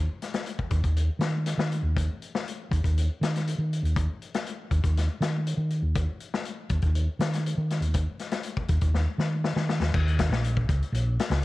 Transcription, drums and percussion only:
0.22 snare soft
0.22 closed hi-hat medium
0.34 snare medium
0.34 closed hi-hat soft
0.46 closed hi-hat medium
0.59 kick medium
0.70 kick medium
0.70 closed hi-hat soft
0.84 kick medium
0.84 closed hi-hat soft
0.96 closed hi-hat medium
1.20 snare medium
1.20 closed hi-hat soft
1.46 snare soft
1.46 closed hi-hat medium
1.59 snare medium
1.72 closed hi-hat soft
1.97 kick medium
1.97 closed hi-hat medium
2.22 closed hi-hat soft
2.35 snare medium
2.48 closed hi-hat medium
2.72 kick medium
2.72 closed hi-hat soft
2.84 kick medium
2.84 closed hi-hat soft
2.98 closed hi-hat medium
3.23 snare medium
3.23 closed hi-hat medium
3.35 snare soft
3.35 closed hi-hat soft
3.47 closed hi-hat medium
3.73 closed hi-hat soft
3.85 closed hi-hat soft
3.96 kick medium
3.96 closed hi-hat medium
4.22 closed hi-hat soft
4.34 snare medium
4.34 closed hi-hat soft
4.46 closed hi-hat medium
4.71 kick medium
4.71 closed hi-hat soft
4.84 kick medium
4.84 closed hi-hat soft
4.97 snare soft
4.97 closed hi-hat medium
5.22 snare medium
5.22 closed hi-hat soft
5.47 closed hi-hat medium
5.70 closed hi-hat soft
5.95 kick medium
5.95 closed hi-hat medium
6.20 closed hi-hat soft
6.34 snare medium
6.45 closed hi-hat medium
6.69 kick medium
6.69 closed hi-hat soft
6.82 kick medium
6.82 closed hi-hat soft
6.95 closed hi-hat medium
7.20 snare medium
7.20 closed hi-hat soft
7.33 snare soft
7.33 closed hi-hat medium
7.46 closed hi-hat medium
7.70 snare soft
7.70 closed hi-hat soft
7.82 closed hi-hat soft
7.94 kick medium
7.94 closed hi-hat medium
8.19 snare soft
8.19 closed hi-hat soft
8.31 snare medium
8.31 closed hi-hat soft
8.43 closed hi-hat medium
8.57 kick medium
8.68 kick medium
8.68 closed hi-hat soft
8.81 kick medium
8.81 closed hi-hat soft
8.94 snare soft
9.19 snare soft
9.44 snare medium
9.56 snare medium
9.69 snare medium
9.82 snare medium
9.94 kick medium
9.94 crash medium
10.08 closed hi-hat soft
10.19 kick medium
10.19 snare medium
10.19 closed hi-hat soft
10.32 snare medium
10.44 closed hi-hat medium
10.57 kick medium
10.69 kick medium
10.69 closed hi-hat soft
10.82 closed hi-hat soft
10.94 closed hi-hat medium
11.19 snare medium
11.19 closed hi-hat medium
11.31 snare medium
11.31 closed hi-hat soft

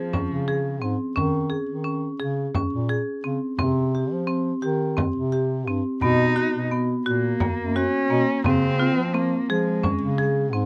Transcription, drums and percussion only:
0.14 frame drum medium
0.48 frame drum soft
1.17 frame drum medium
1.51 frame drum soft
2.54 frame drum medium
2.89 frame drum soft
3.59 frame drum medium
4.98 frame drum medium
5.67 frame drum soft
6.01 frame drum soft
6.36 frame drum soft
7.40 frame drum medium
7.75 frame drum soft
8.44 frame drum medium
8.79 frame drum soft
9.84 frame drum medium
10.18 frame drum soft

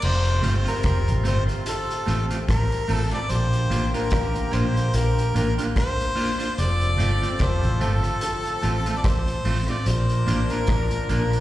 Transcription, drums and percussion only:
0.02 crash loud
0.25 closed hi-hat soft
0.43 closed hi-hat medium
0.66 closed hi-hat medium
0.83 kick loud
0.83 cross-stick loud
0.83 closed hi-hat medium
1.08 closed hi-hat medium
1.25 closed hi-hat medium
1.49 closed hi-hat medium
1.66 closed hi-hat loud
1.91 closed hi-hat medium
2.08 closed hi-hat medium
2.30 closed hi-hat medium
2.49 kick loud
2.49 cross-stick loud
2.49 closed hi-hat loud
2.72 closed hi-hat medium
2.89 open hi-hat medium
3.11 closed hi-hat medium
3.29 closed hi-hat medium
3.53 closed hi-hat soft
3.71 closed hi-hat medium
3.94 closed hi-hat medium
4.10 kick loud
4.10 cross-stick loud
4.10 closed hi-hat medium
4.35 closed hi-hat medium
4.53 closed hi-hat medium
4.77 closed hi-hat medium
4.93 closed hi-hat loud
5.19 closed hi-hat medium
5.36 closed hi-hat medium
5.58 closed hi-hat medium
5.76 kick loud
5.76 cross-stick loud
5.76 closed hi-hat loud
6.00 closed hi-hat soft
6.17 open hi-hat medium
6.40 closed hi-hat medium
6.58 closed hi-hat medium
6.81 closed hi-hat soft
6.99 closed hi-hat medium
7.23 closed hi-hat medium
7.39 kick loud
7.39 cross-stick loud
7.39 closed hi-hat medium
7.63 closed hi-hat medium
7.81 closed hi-hat medium
8.04 closed hi-hat soft
8.21 closed hi-hat loud
8.45 closed hi-hat soft
8.63 closed hi-hat medium
8.86 closed hi-hat medium
9.04 kick loud
9.04 cross-stick loud
9.04 closed hi-hat loud
9.27 closed hi-hat medium
9.45 open hi-hat medium
9.68 closed hi-hat medium
9.86 closed hi-hat medium
10.09 closed hi-hat soft
10.28 closed hi-hat medium
10.50 closed hi-hat soft
10.67 kick loud
10.67 cross-stick loud
10.67 closed hi-hat medium
10.91 closed hi-hat medium
11.09 closed hi-hat medium
11.33 closed hi-hat soft

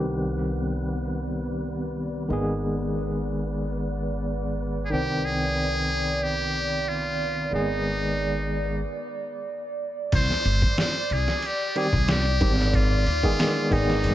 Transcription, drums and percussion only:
10.12 kick loud
10.12 crash medium
10.12 ride medium
10.30 snare soft
10.45 ride medium
10.62 kick loud
10.78 snare loud
10.78 ride medium
11.10 ride medium
11.28 snare medium
11.42 ride medium
11.76 ride medium
11.93 kick loud
12.08 snare loud
12.08 ride medium
12.25 ride soft
12.41 kick medium
12.41 ride medium
12.59 snare soft
12.74 kick loud
12.74 ride medium
13.07 ride medium
13.23 kick loud
13.39 snare loud
13.39 ride medium
13.71 kick medium
13.71 ride medium
13.90 snare soft
14.04 ride medium

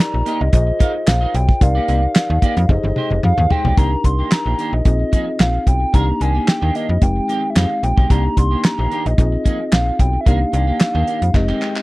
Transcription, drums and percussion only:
0.00 snare loud
0.26 closed hi-hat medium
0.53 kick medium
0.53 closed hi-hat medium
0.80 kick loud
0.80 closed hi-hat medium
1.07 snare loud
1.07 clap medium
1.07 closed hi-hat medium
1.34 closed hi-hat medium
1.49 kick loud
1.61 kick loud
1.61 closed hi-hat medium
1.88 closed hi-hat medium
2.15 snare loud
2.15 clap medium
2.15 closed hi-hat loud
2.42 kick medium
2.42 closed hi-hat medium
2.57 closed hi-hat medium
2.69 kick loud
2.69 high tom medium
2.84 high tom soft
2.96 mid tom medium
3.10 mid tom medium
3.23 mid tom medium
3.38 mid tom medium
3.50 floor tom loud
3.65 floor tom medium
3.78 kick loud
3.78 closed hi-hat medium
4.04 kick medium
4.04 closed hi-hat medium
4.31 snare loud
4.31 clap medium
4.31 closed hi-hat medium
4.59 closed hi-hat medium
4.85 kick loud
4.85 closed hi-hat medium
5.13 kick medium
5.13 closed hi-hat medium
5.40 snare loud
5.40 clap medium
5.40 closed hi-hat medium
5.67 kick medium
5.67 closed hi-hat medium
5.94 kick loud
5.94 closed hi-hat medium
6.21 closed hi-hat medium
6.48 snare loud
6.48 clap medium
6.48 closed hi-hat medium
6.75 closed hi-hat medium
7.02 kick medium
7.02 closed hi-hat medium
7.29 closed hi-hat medium
7.56 snare loud
7.56 clap medium
7.56 closed hi-hat medium
7.83 closed hi-hat medium
7.98 kick medium
8.10 kick loud
8.10 closed hi-hat medium
8.37 kick medium
8.37 closed hi-hat medium
8.64 snare loud
8.64 clap medium
8.64 closed hi-hat medium
8.91 closed hi-hat medium
9.06 closed hi-hat soft
9.18 kick loud
9.18 closed hi-hat medium
9.45 kick medium
9.45 closed hi-hat medium
9.72 snare loud
9.72 clap loud
9.72 closed hi-hat medium
9.99 kick medium
9.99 closed hi-hat medium
10.26 kick loud
10.26 closed hi-hat medium
10.53 closed hi-hat medium
10.80 snare loud
10.80 clap medium
10.80 closed hi-hat medium
11.07 closed hi-hat medium
11.22 closed hi-hat medium
11.34 kick medium
11.34 clap soft
11.49 clap soft
11.62 clap medium
11.76 clap medium

